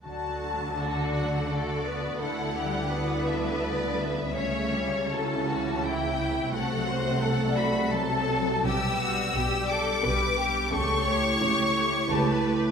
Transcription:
<<
  \new Staff \with { instrumentName = "Violin section" } { \time 3/4 \key d \major \tempo 4 = 85 a''4. fis''8 d''4 | fis''4. e''8 d''8 e''8~ | e''4 a''4 g''4 | fis''4. b''8 a''4 |
e'''4. d'''4. | cis'''2 a''8 r8 | }
  \new Staff \with { instrumentName = "Violin section" } { \time 3/4 \key d \major r4 fis'4 a'8 b'8 | a'8 g'8 b'2 | cis''4 a'8 fis'8 e'4 | a'8 c''8 a'8 fis'8 a'4 |
g'8 fis'8 g'8 a'8 b'8 g'8 | a'8 cis''4. b'4 | }
  \new Staff \with { instrumentName = "Harp" } { \time 3/4 \key d \major \tuplet 3/2 { d8 d'8 a8 fis'8 d''8 a8 d'8 a8 d'8 } | \tuplet 3/2 { d8 d'8 g8 e'8 e''8 g8 d'8 g8 d'8 } | \tuplet 3/2 { cis8 cis'8 a8 e'8 e''8 a8 cis'8 a8 cis'8 } | \tuplet 3/2 { c8 fis8 a8 a'8 d''8 a8 fis8 a8 fis8 } |
\tuplet 3/2 { b,8 b8 d'8 g'8 d''8 d'8 b8 d'8 b8 } | \tuplet 3/2 { cis8 cis'8 e'8 g'8 a'8 e'8 cis'8 e'8 cis'8 } | }
  \new Staff \with { instrumentName = "Viola section" } { \time 3/4 \key d \major << { fis'4 d'4 fis'4 | e'4 d'4 b4 | cis'4 cis'4 e'8 e'8 | fis'4 a'4 a'4 |
g'8 g'8 g'8 g'8 g'8 g'8 | g'8 g'8 g'8 g'8 g'8 g'8 | } \\ { fis2 a8 b8 | a8 g8 b4 b4 | a8 g8 fis8 e4. | a2 fis4 |
g8 g8 g8 g8 g8 g8 | a8 a8 a8 a8 a8 a8 | } >> }
  \new Staff \with { instrumentName = "Cello section" } { \clef bass \time 3/4 \key d \major d2. | d2. | cis2. | c2. |
b,4 b,4 b,4 | cis4 cis4 cis4 | }
  \new Staff \with { instrumentName = "Double bass section" } { \clef bass \time 3/4 \key d \major d,2. | d,2. | cis,2. | c,2. |
b,,4 b,,4 b,,4 | cis,4 cis,4 cis,4 | }
>>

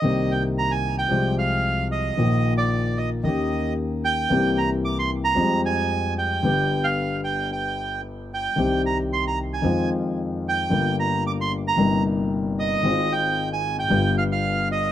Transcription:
<<
  \new Staff \with { instrumentName = "Bandoneon" } { \time 4/4 \key c \minor \tempo 4 = 112 ees''8 g''8 bes''16 aes''8 g''8. f''4 ees''8~ | ees''8. d''8. ees''8 ees''4 r8 g''8~ | g''8 bes''8 d'''16 c'''8 bes''8. aes''4 g''8~ | g''8. f''8. g''8 g''4 r8 g''8~ |
g''8 bes''8 c'''16 bes''8 aes''8. r4 g''8~ | g''8 bes''8 d'''16 c'''8 bes''8. r4 ees''8~ | ees''8 g''8. aes''8 g''8. f''16 f''8. ees''8 | }
  \new Staff \with { instrumentName = "Grand piano" } { \clef bass \time 4/4 \key c \minor <c, c ees bes c' g'>2 <c, c f aes c' g'>2 | <bes,, bes, ees f bes f'>2 <ees, ees bes des' g'>2 | <c, c e bes c' g'>2 <f, f g aes c'>2 | <g,, g, d g b g'>1 |
<c, c ees g c' g'>2 <f, ees f aes c' f'>2 | <g,, g, d g bes f'>2 <g,, g, c g bes ees'>2 | <aes,, aes, ees aes c' f'>2 <g,, g, d g b f'>2 | }
  \new Staff \with { instrumentName = "Upright bass" } { \clef bass \time 4/4 \key c \minor c,2 c,2 | bes,,2 ees,2 | c,2 f,2 | g,,1 |
c,2 f,2 | g,,2 g,,2 | aes,,2 g,,2 | }
>>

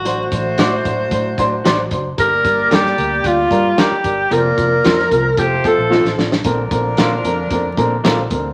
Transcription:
<<
  \new Staff \with { instrumentName = "Clean electric guitar" } { \time 4/4 \key bes \major \tempo 4 = 113 r4 <fis' c'' d''>16 r4. r16 <fis' c'' d''>16 r8. | r4 <g' bes' d''>16 r4. r16 <g' bes' d''>16 r8. | r4 <f' bes' c''>16 r4. r16 <f' a' c''>16 r8. | r4 <d' f' c''>16 r4. r16 <d' f' c''>16 r8. | }
  \new Staff \with { instrumentName = "Alto saxophone" } { \time 4/4 \key bes \major ges'8 r2. r8 | bes'4 g'4 f'4 g'4 | bes'2 g'8 a'4 r8 | r1 | }
  \new Staff \with { instrumentName = "Horn section" } { \time 4/4 \key bes \major <a fis' c''>2.~ <a fis' c''>8 r8 | <bes g' d''>2.~ <bes g' d''>8 r8 | <bes f' d''>4. r8 <a f' c''>4. r8 | <f d' bes'>2.~ <f d' bes'>8 r8 | }
  \new Staff \with { instrumentName = "Upright piano" } { \time 4/4 \key bes \major <fis d' c''>8 <fis d' c''>8 <fis d' c''>8 <fis d' c''>8 <fis d' c''>8 <fis d' c''>8 <fis d' c''>8 <fis d' c''>8 | <g d' bes'>8 <g d' bes'>8 <g d' bes'>8 <g d' bes'>8 <g d' g'>8 <g d' bes'>8 <g d' bes'>8 <g d' bes'>8 | <f c' bes'>8 <f c' bes'>8 <f c' bes'>8 <f c' bes'>8 <f c' a'>8 <f c' a'>8 <f c' f'>8 <f c' d'>8 | <d c' bes'>8 <d c' bes'>8 <d c' bes'>8 <d c' bes'>8 <d c' bes'>8 <d c' bes'>8 <d c' bes'>8 <d c' bes'>8 | }
  \new Staff \with { instrumentName = "Fingered electric bass" } { \clef bass \time 4/4 \key bes \major a,,8 a,,8 a,8 a,8 a,8 a,8 a,,8 fis,,8 | g,,8 g,,8 g,8 d,8 d,8 g,8 r8 g,,8 | f,,8 f,,8 f,8 c,8 f,,8 r16 bes,,8 a,,16 a,,8 | bes,,8 bes,,8 bes,8 f,8 f,8 bes,8 bes,,8 d,8 | }
  \new DrumStaff \with { instrumentName = "Drums" } \drummode { \time 4/4 hh8 <hh bd>8 <hh sn>8 <hh bd>8 <hh bd>8 <hh bd>8 <hh sn>8 <hh bd>8 | <hh bd>8 <hh bd>8 <hh sn>16 sn16 hh8 <hh bd>8 <hh bd>8 <hh sn>8 <hh bd>8 | hh8 <hh bd>8 <hh sn>16 sn16 <hh bd>8 <hh bd>8 <hh bd>8 sn16 sn16 sn16 sn16 | <hh bd>8 <hh bd>8 <hh sn>8 hh8 <hh bd>8 <hh bd>8 <hh sn>8 <hh bd>8 | }
>>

